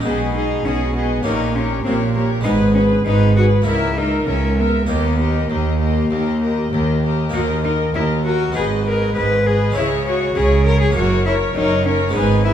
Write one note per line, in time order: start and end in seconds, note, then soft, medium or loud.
0.00 1.19 G#3 soft
0.00 1.20 D#4 soft
0.04 0.59 B1 soft
0.04 0.55 B2 soft
0.04 0.58 B2 soft
0.04 0.34 B3 medium
0.04 0.33 G#4 soft
0.04 0.34 G#4 soft
0.04 0.34 D#5 soft
0.35 0.67 D#4 medium
0.35 0.64 G#4 soft
0.35 0.65 D#5 soft
0.65 1.18 B1 medium
0.65 1.16 B2 soft
0.65 1.19 B2 medium
0.65 0.94 C#4 medium
0.65 0.95 G#4 soft
0.65 0.93 G#4 soft
0.65 0.94 D#5 soft
0.94 1.27 B3 medium
0.94 1.24 G#4 soft
0.94 1.25 G#4 soft
0.94 1.25 D#5 soft
1.23 1.78 A#1 medium
1.23 1.78 A#2 medium
1.23 1.75 A#2 soft
1.23 2.40 A#3 soft
1.23 2.41 C#4 soft
1.23 1.57 D#4 medium
1.23 1.55 G4 soft
1.23 1.54 A#4 soft
1.23 1.54 C#5 soft
1.55 1.84 C#4 medium
1.55 1.85 G4 soft
1.55 1.84 A#4 soft
1.55 1.83 C#5 soft
1.84 2.38 A#1 medium
1.84 2.38 A#2 medium
1.84 2.36 A#2 soft
1.84 1.93 C4 medium
1.84 2.15 G4 medium
1.84 2.13 A#4 soft
1.84 2.14 C#5 soft
2.15 2.23 A#3 medium
2.15 2.45 G4 soft
2.15 2.44 A#4 soft
2.15 2.44 C#5 soft
2.41 2.98 G#1 medium
2.41 3.60 G#3 soft
2.41 3.61 B3 soft
2.41 2.52 D#4 medium
2.41 3.62 G#4 soft
2.45 2.98 G#2 medium
2.45 2.95 G#2 soft
2.45 2.74 G#4 medium
2.45 2.73 B4 medium
2.45 2.75 B4 soft
2.75 2.83 C#4 medium
2.75 3.05 G#4 soft
2.75 3.04 B4 soft
2.75 3.05 B4 soft
3.05 3.58 G#1 medium
3.05 3.59 G#2 medium
3.05 3.56 G#2 soft
3.05 3.35 D#4 medium
3.05 3.35 G#4 soft
3.05 3.35 B4 soft
3.36 3.45 F#4 medium
3.36 3.65 G#4 soft
3.36 3.65 B4 soft
3.36 3.66 B4 soft
3.62 4.82 A#3 soft
3.62 4.83 E4 soft
3.66 4.20 C#2 medium
3.66 4.17 C#2 soft
3.66 3.99 E4 medium
3.66 3.95 A#4 soft
3.66 3.96 A#4 soft
3.66 3.96 E5 soft
3.97 4.27 D#4 medium
3.97 4.26 A#4 soft
3.97 4.26 E5 soft
4.27 4.81 C#2 soft
4.27 4.81 C#2 medium
4.27 4.78 C#2 soft
4.27 4.61 C#4 medium
4.27 4.56 A#4 soft
4.27 4.56 E5 soft
4.57 4.87 B3 medium
4.57 4.87 A#4 soft
4.57 4.87 E5 soft
4.86 5.42 D#2 medium
4.86 5.40 D#2 soft
4.86 5.43 D#2 soft
4.86 7.28 A#3 soft
4.86 5.51 B3 medium
4.86 7.29 D#4 soft
4.86 5.17 G4 soft
4.86 5.18 A#4 soft
4.86 5.18 D#5 soft
5.18 5.48 G4 soft
5.18 5.49 A#4 soft
5.18 5.48 D#5 soft
5.49 6.04 D#2 medium
5.49 6.01 D#2 soft
5.49 6.04 D#2 soft
5.49 7.03 A#3 medium
5.49 5.78 G4 soft
5.49 5.79 A#4 soft
5.49 5.80 D#5 soft
5.79 6.09 G4 soft
5.79 6.10 A#4 soft
5.79 6.10 D#5 soft
6.10 6.62 D#2 soft
6.10 6.65 D#2 medium
6.10 6.40 G4 soft
6.10 6.40 A#4 soft
6.10 6.41 D#5 soft
6.41 6.70 G4 soft
6.41 6.72 A#4 soft
6.41 6.72 D#5 soft
6.72 7.27 D#2 soft
6.72 7.24 D#2 soft
6.72 7.02 G4 soft
6.72 7.03 A#4 soft
6.72 7.03 D#5 soft
7.03 7.33 G4 soft
7.03 7.31 A#4 soft
7.03 7.34 D#5 soft
7.29 7.85 D#2 soft
7.29 8.50 A#3 soft
7.29 8.50 D#4 soft
7.29 7.62 A#4 soft
7.34 7.88 D#2 medium
7.34 7.42 F#4 medium
7.34 7.64 D#5 soft
7.63 7.72 D#4 medium
7.63 7.93 A#4 soft
7.63 7.94 D#5 soft
7.94 8.46 D#2 soft
7.94 8.48 D#2 soft
7.94 8.49 D#2 soft
7.94 8.03 E4 medium
7.94 8.24 A#4 soft
7.94 8.25 D#5 soft
8.24 8.55 F#4 medium
8.24 8.55 A#4 soft
8.24 8.56 D#5 soft
8.52 9.09 G#1 medium
8.52 9.06 G#2 soft
8.52 9.09 G#2 soft
8.52 9.69 G#3 soft
8.52 9.71 B3 soft
8.52 9.72 D#4 soft
8.52 8.85 G#4 soft
8.52 8.83 B4 soft
8.56 8.64 G#4 medium
8.56 8.87 D#5 soft
8.84 9.15 G#4 soft
8.84 9.16 A#4 medium
8.84 9.13 B4 soft
8.89 9.16 D#5 soft
9.14 9.69 G#1 soft
9.14 9.66 G#2 soft
9.14 9.69 G#2 medium
9.14 9.45 G#4 soft
9.14 9.45 B4 soft
9.14 9.48 B4 medium
9.14 9.45 D#5 soft
9.46 9.75 G#4 soft
9.46 9.77 G#4 medium
9.46 9.75 B4 soft
9.46 9.76 D#5 soft
9.71 10.90 G#3 soft
9.71 10.91 C#4 soft
9.71 10.92 E4 soft
9.75 10.30 C#2 medium
9.75 10.26 C#3 soft
9.75 10.29 C#3 medium
9.75 9.86 E4 medium
9.75 10.05 G#4 medium
9.75 10.05 C#5 medium
9.75 10.04 C#5 soft
10.05 10.39 F#4 medium
10.05 10.34 G#4 soft
10.05 10.34 C#5 soft
10.35 10.89 C#2 medium
10.35 10.86 C#3 soft
10.35 10.89 C#3 medium
10.35 10.65 G#4 soft
10.35 10.66 G#4 medium
10.35 10.64 C#5 soft
10.35 10.65 C#5 soft
10.65 10.96 G#4 soft
10.65 10.81 A#4 medium
10.65 10.95 C#5 soft
10.65 10.96 C#5 soft
10.81 10.95 G#4 medium
10.91 12.10 A#3 soft
10.91 12.11 C#4 soft
10.95 11.49 F#1 medium
10.95 11.46 F#2 soft
10.95 11.49 F#2 medium
10.95 11.25 F#4 medium
10.95 11.26 A#4 soft
10.95 11.26 C#5 medium
10.95 11.26 C#5 soft
11.26 11.34 E4 medium
11.26 11.56 A#4 medium
11.26 11.55 C#5 soft
11.26 11.56 C#5 soft
11.55 12.09 F#1 medium
11.55 12.06 F#2 soft
11.55 12.09 F#2 medium
11.55 11.87 D#4 medium
11.55 11.86 A#4 medium
11.55 11.84 C#5 medium
11.55 11.85 C#5 soft
11.85 12.16 C#4 medium
11.85 12.16 A#4 medium
11.85 12.15 C#5 soft
11.85 12.16 C#5 soft
12.09 12.53 G#3 medium
12.09 12.53 B3 soft
12.09 12.53 D#4 soft
12.14 12.53 G#1 medium
12.14 12.53 G#2 soft
12.14 12.53 G#2 medium
12.14 12.44 D#4 medium
12.14 12.45 G#4 medium
12.14 12.44 B4 medium
12.14 12.45 G#5 medium
12.45 12.53 E4 medium
12.45 12.53 G#4 soft
12.45 12.53 B4 medium
12.45 12.53 G#5 soft